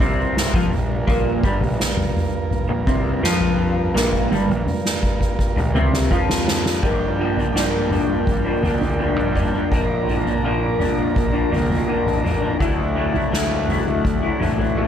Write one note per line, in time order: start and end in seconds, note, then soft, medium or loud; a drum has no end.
0.00 0.50 C2 medium
0.00 6.90 G2 medium
0.00 0.53 C3 medium
0.00 6.90 G3 medium
0.00 6.79 A#3 medium
0.00 0.53 C4 loud
0.00 6.80 F4 medium
0.00 6.79 A#4 medium
0.00 kick loud
0.00 floor tom medium
0.37 snare medium
0.54 0.70 F2 medium
0.54 0.71 F3 medium
0.54 0.71 F4 medium
0.54 kick loud
0.54 floor tom medium
0.54 mid tom medium
0.71 1.05 A#1 medium
0.71 1.01 A#2 medium
0.71 mid tom medium
1.07 1.41 A#1 medium
1.07 1.42 A#2 medium
1.07 1.43 A#3 loud
1.07 kick loud
1.07 floor tom medium
1.43 1.60 G1 medium
1.43 1.60 G2 medium
1.43 1.61 G3 medium
1.43 kick loud
1.61 1.78 A#1 medium
1.61 1.80 A#2 medium
1.61 floor tom medium
1.80 snare medium
1.97 floor tom medium
1.97 mid tom medium
2.15 mid tom medium
2.51 floor tom medium
2.69 2.86 A#1 medium
2.69 2.87 A#2 medium
2.87 3.21 C2 medium
2.87 3.22 C3 medium
2.87 3.23 C4 medium
2.87 kick loud
2.87 floor tom medium
3.23 3.91 F2 medium
3.23 3.94 F3 medium
3.23 3.94 F4 loud
3.23 snare medium
3.41 floor tom medium
3.94 4.29 A#1 medium
3.94 4.30 A#2 medium
3.94 4.30 A#3 loud
3.94 snare medium
4.13 kick medium
4.31 4.48 G1 medium
4.31 4.48 G2 medium
4.31 4.48 G3 loud
4.31 high tom medium
4.48 4.66 A#1 medium
4.48 4.67 A#2 medium
4.48 high tom medium
4.67 mid tom medium
4.85 snare medium
5.03 kick medium
5.21 kick medium
5.39 kick medium
5.56 5.74 A#1 medium
5.56 5.75 A#2 medium
5.56 mid tom medium
5.75 6.09 C2 medium
5.75 6.10 C3 medium
5.75 6.10 C4 loud
5.75 mid tom medium
5.93 snare medium
6.11 6.79 F2 medium
6.11 6.82 F3 medium
6.11 6.83 F4 medium
6.11 kick medium
6.30 snare medium
6.48 snare loud
6.66 snare medium
6.82 7.54 G2 medium
6.82 7.42 G2 medium
6.82 7.18 D3 medium
6.82 7.19 F3 medium
6.82 7.20 A#3 medium
6.82 7.21 D4 medium
6.82 12.56 F4 medium
6.82 12.57 A#4 medium
6.82 14.88 D5 medium
6.82 9.69 G5 medium
6.82 kick loud
6.82 floor tom medium
7.19 7.54 D3 medium
7.19 7.39 F3 medium
7.19 7.38 A#3 medium
7.19 7.37 D4 medium
7.37 7.56 F3 medium
7.37 7.56 A#3 medium
7.37 7.56 D4 medium
7.37 floor tom medium
7.54 7.99 G2 medium
7.54 8.27 G2 medium
7.54 7.89 D3 medium
7.54 7.91 F3 medium
7.54 7.92 A#3 medium
7.54 7.93 D4 medium
7.54 snare medium
7.90 8.62 D3 medium
7.90 8.46 F3 medium
7.90 8.45 A#3 medium
7.90 8.44 D4 medium
7.90 floor tom medium
7.90 mid tom medium
8.09 8.54 G2 medium
8.27 kick loud
8.27 floor tom medium
8.45 8.62 F3 medium
8.45 8.63 A#3 medium
8.45 8.65 D4 medium
8.63 9.16 D2 medium
8.63 8.98 D3 medium
8.63 8.83 F3 medium
8.63 8.81 A#3 medium
8.63 8.80 D4 medium
8.63 floor tom medium
8.63 mid tom medium
8.81 8.99 F3 medium
8.81 8.99 A#3 medium
8.81 9.00 D4 medium
8.81 floor tom medium
8.98 9.69 G2 medium
8.98 9.33 D3 medium
8.98 9.35 F3 medium
8.98 9.35 A#3 medium
8.98 9.36 D4 loud
9.16 9.61 G2 medium
9.16 floor tom medium
9.35 9.69 D3 medium
9.35 9.55 F3 medium
9.35 9.53 A#3 medium
9.35 9.53 D4 medium
9.35 kick medium
9.35 mid tom medium
9.53 9.71 F3 medium
9.53 9.70 A#3 medium
9.53 9.74 D4 medium
9.71 10.31 A#1 medium
9.71 10.42 A#2 medium
9.71 10.06 D3 medium
9.71 10.07 F3 medium
9.71 10.08 A#3 loud
9.71 10.09 D4 loud
9.71 12.58 A#5 medium
9.71 kick loud
9.71 floor tom medium
10.07 10.43 D3 medium
10.07 10.27 F3 medium
10.07 10.25 A#3 medium
10.07 10.25 D4 medium
10.07 floor tom medium
10.25 10.44 F3 medium
10.25 10.44 A#3 medium
10.25 10.46 D4 medium
10.25 floor tom medium
10.43 11.16 A#2 medium
10.43 10.74 A#2 medium
10.43 10.78 D3 medium
10.43 10.79 F3 medium
10.43 10.79 A#3 medium
10.43 10.81 D4 medium
10.79 11.50 D3 medium
10.79 11.34 F3 medium
10.79 11.33 A#3 medium
10.79 11.31 D4 medium
10.79 floor tom medium
10.79 mid tom medium
10.98 11.43 A#1 medium
11.16 kick loud
11.16 floor tom medium
11.33 11.50 F3 medium
11.33 11.51 A#3 medium
11.33 11.52 D4 medium
11.51 11.82 D2 medium
11.51 11.87 D3 medium
11.51 11.71 F3 medium
11.51 11.69 A#3 medium
11.51 11.68 D4 medium
11.51 floor tom medium
11.51 mid tom medium
11.69 11.87 F3 medium
11.69 11.88 A#3 medium
11.69 11.89 D4 medium
11.69 floor tom medium
11.69 mid tom medium
11.87 12.58 A#2 medium
11.87 12.22 D3 medium
11.87 12.23 F3 medium
11.87 12.24 A#3 medium
11.87 12.25 D4 loud
12.06 12.51 A1 medium
12.06 floor tom medium
12.23 12.58 D3 medium
12.23 12.43 F3 medium
12.23 12.42 A#3 medium
12.23 12.41 D4 medium
12.23 mid tom medium
12.42 12.59 F3 medium
12.42 12.59 A#3 medium
12.42 12.58 D4 medium
12.59 13.20 D2 medium
12.59 12.94 D3 medium
12.59 12.95 F#3 medium
12.59 12.97 A3 medium
12.59 14.88 E4 medium
12.59 12.97 E4 loud
12.59 14.88 A4 medium
12.59 14.88 F#5 medium
12.59 kick loud
12.59 floor tom medium
12.96 13.30 D3 medium
12.96 13.15 F#3 medium
12.96 13.15 A3 medium
12.96 13.13 E4 medium
13.14 13.31 F#3 medium
13.14 13.33 A3 medium
13.14 13.34 E4 medium
13.14 floor tom medium
13.32 13.77 D2 medium
13.32 13.66 D3 medium
13.32 13.67 F#3 medium
13.32 13.69 A3 medium
13.32 13.70 E4 medium
13.32 snare medium
13.68 14.38 D3 medium
13.68 14.24 F#3 medium
13.68 14.23 A3 medium
13.68 14.21 E4 medium
13.68 floor tom medium
13.68 mid tom medium
13.87 14.31 D2 medium
14.05 kick loud
14.05 floor tom medium
14.22 14.39 F#3 medium
14.22 14.40 A3 medium
14.22 14.41 E4 medium
14.39 14.88 A1 medium
14.39 14.75 D3 medium
14.39 14.59 F#3 medium
14.39 14.58 A3 medium
14.39 14.57 E4 medium
14.39 floor tom medium
14.39 mid tom medium
14.58 14.76 F#3 medium
14.58 14.76 A3 medium
14.58 14.77 E4 medium
14.58 floor tom medium
14.76 14.88 D3 medium
14.76 14.88 F#3 medium
14.76 14.88 A3 medium
14.76 14.88 E4 medium